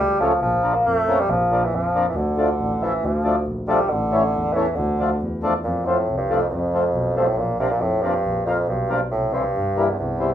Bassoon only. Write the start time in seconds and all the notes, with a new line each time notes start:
0.00 G3
0.20 F3
0.42 F3
0.74 A#3
0.87 A3
1.20 G3
1.30 F3
1.65 E3
1.75 F3
2.10 E3
2.17 D3
2.83 E3
3.06 F3
3.68 G3
3.90 D3
4.53 E3
4.71 E3
4.76 D3
5.64 A#2
5.85 A2
6.18 G2
6.39 F2
6.50 F2
7.17 G2
7.26 A2
7.38 A#2
7.60 C3
7.71 A#2
7.81 A2
8.02 G2
8.46 F2
8.69 G2
9.11 A2
9.34 G2
9.89 E2
9.99 E2